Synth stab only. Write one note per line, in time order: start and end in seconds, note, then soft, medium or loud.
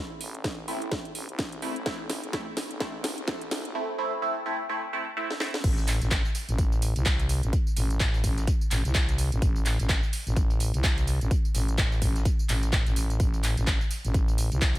0.68 0.81 A3 medium
0.68 0.81 C4 medium
0.68 0.81 E4 loud
1.62 1.75 A3 medium
1.62 1.75 C4 medium
1.62 1.75 E4 loud
1.86 1.99 A3 medium
1.86 1.99 C4 medium
1.86 1.99 E4 loud
2.33 2.46 A3 medium
2.33 2.46 C4 medium
2.33 2.46 E4 loud
2.80 2.93 A3 medium
2.80 2.93 C4 medium
2.80 2.93 E4 loud
3.28 3.40 A3 medium
3.28 3.40 C4 medium
3.28 3.40 E4 loud
3.75 3.88 A3 medium
3.75 3.88 C4 medium
3.75 3.88 E4 loud
3.98 4.11 A3 medium
3.98 4.11 C4 medium
3.98 4.11 E4 loud
4.22 4.35 A3 medium
4.22 4.35 C4 medium
4.22 4.35 E4 loud
4.46 4.58 A3 loud
4.46 4.58 C4 medium
4.46 4.58 E4 loud
4.69 4.82 A3 loud
4.69 4.82 C4 medium
4.69 4.82 E4 loud
4.93 5.06 A3 loud
4.93 5.06 C4 medium
4.93 5.06 E4 loud
5.17 5.29 A3 loud
5.17 5.29 C4 medium
5.17 5.29 E4 loud
5.40 5.53 A3 loud
5.40 5.53 C4 medium
5.40 5.53 E4 loud